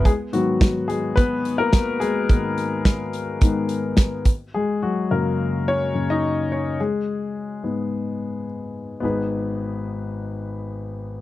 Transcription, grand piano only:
X:1
M:4/4
L:1/16
Q:1/4=107
K:G#m
V:1 name="Grand piano"
[G,G]2 [F,F]4 [G,G]2 [B,B]3 [A,A]3 [G,G]2- | [G,G]2 z12 z2 | [G,G]2 [F,F]2 A4 [Cc]3 [Dd]3 [Cc]2 | [G,G]12 z4 |
[B,DGB]16 |]
V:2 name="Grand piano" clef=bass
z2 [G,,D,B,]12- [G,,D,B,]2 | [G,,D,B,]2 z6 [G,,D,B,]2 z6 | z4 [F,,C,A,]6 [F,,C,A,]2 z4 | z6 [G,,G,B,]8- [G,,G,B,]2 |
G,,,16 |]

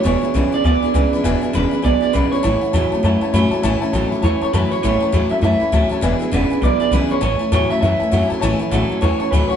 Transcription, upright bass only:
X:1
M:4/4
L:1/8
Q:"Swing" 1/4=201
K:A
V:1 name="Upright bass" clef=bass
E,,, z B,,, z D,, z C,, z | E,,, z E,,, z B,,, z B,,, z | A,,, z E,, z F,, z F,, z | A,,, z A,,, z E,, z F,, z |
A,,, z E,, z F,, z D,, z | E,,, z E,,, z B,,, z B,,, z | A,,, z E,, z F,, z F,, z | A,,, z A,,, z E,, z D,, z |]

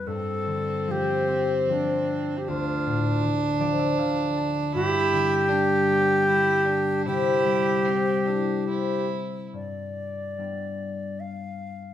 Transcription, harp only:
X:1
M:3/4
L:1/16
Q:1/4=76
K:Gmix
V:1 name="Harp"
z12 | z6 d e f2 a2 | z12 | z12 |
z12 |]
V:2 name="Harp" clef=bass
G,,2 D,2 F,2 C2 F,4 | D,,2 A,,2 D,2 F,2 D,4 | G,,2 D,2 G,2 B,2 G,4 | C,2 G,2 C2 E2 C4 |
G,,4 [G,B,D]8 |]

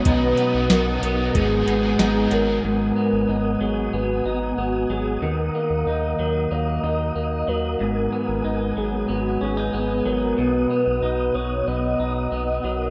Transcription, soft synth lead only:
X:1
M:4/4
L:1/8
Q:1/4=93
K:G#m
V:1 name="Soft synth lead"
B2 A2 G3 A | A3 G F F2 G | A3 A d3 A | A3 G F G2 A |
B2 B c d3 A |]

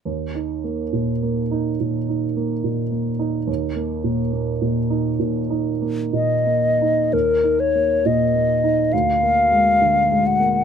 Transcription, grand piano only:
X:1
M:4/4
L:1/8
Q:1/4=68
K:Bbphr
V:1 name="Grand piano"
(3E,, E B, (3B,, B, E (3B,, E B, (3B,, B, E | (3E,, B, B,, (3B, B,, E (3B,, E B, (3B,, B, E | (3E,, E B, (3B,, B, E (3=D,, B, A, (3=D, A, B, |]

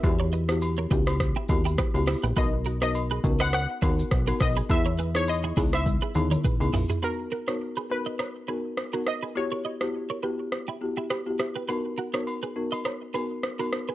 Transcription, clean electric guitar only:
X:1
M:4/4
L:1/16
Q:"Swing 16ths" 1/4=103
K:B
V:1 name="Clean electric guitar"
z [Ac] [Bd] z2 [Ac] [=GB] z2 [EG] z [EG] [GB] z [EG] [GB] | [FB] z [FA] [Ac] z [GB] z [Bd] [Ac] z [GB] z2 [FA] z [GB] | z [Ac] [GB] z2 [EG] [EG] z2 [GB] z [Ac] [GB] z [EG] [EG] | [FB] z [FA] [Ac] z [GB] z [Bd] [Ac] z [GB] z2 [FA] z [GB] |
z [Ac] [Bd] z2 [Ac] [=GB] z2 [EG] z [EG] [GB] z [EG] [GB] | [FB] z [FA] [Ac] z [GB] z [Bd] [Ac] z [GB] z2 [FA] z [GB] |]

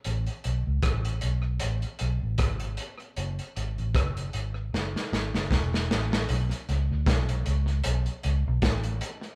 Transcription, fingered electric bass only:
X:1
M:4/4
L:1/16
Q:"Swing 16ths" 1/4=77
K:Bdor
V:1 name="Fingered electric bass" clef=bass
A,,, z B,,, C,, z2 B,,,2 A,,, z B,,, A,,, G,,,2 z2 | F,,, z G,,, A,,, F,,,2 G,,,2 F,,, z G,,, F,,, E,,,2 A,,,2 | B,,, z C,, D,, B,,,2 C,,2 B,,, z C,, B,,, A,,,2 z2 |]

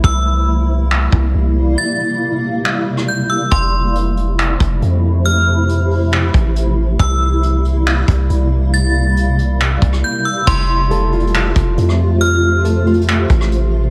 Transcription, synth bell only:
X:1
M:4/4
L:1/8
Q:1/4=138
K:F
V:1 name="Synth bell"
e'2 z6 | a'2 z4 g' e' | c'2 z6 | f'2 z6 |
e'2 z6 | a'2 z4 g' e' | c'2 z6 | f'2 z6 |]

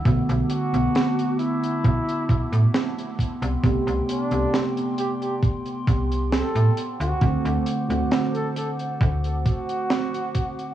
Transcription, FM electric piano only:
X:1
M:4/4
L:1/16
Q:1/4=67
K:Dmix
V:1 name="FM electric piano"
[D,A,B,F]3 [D,A,B,F]8- [D,A,B,F]3 z2 | [C,A,B,G]3 [C,A,B,G]8- [C,A,B,G]3 z2 | [D,A,CF]3 [D,A,CF]12- [D,A,CF] |]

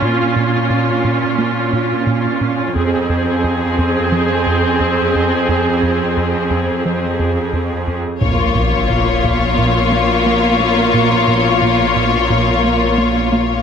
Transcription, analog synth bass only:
X:1
M:4/4
L:1/8
Q:1/4=88
K:Bbm
V:1 name="Analog synth bass" clef=bass
B,, B,, B,, B,, B, B,, B,, B,, | F,, F,, F,, F,, F, F,, F,, F,, | F,, F,, F,, F,, F, F,, F,, F,, | B,, B,, B,, B,, B,, B, B, B, |
B,, B,, B,, B,, B,, B, B, B, |]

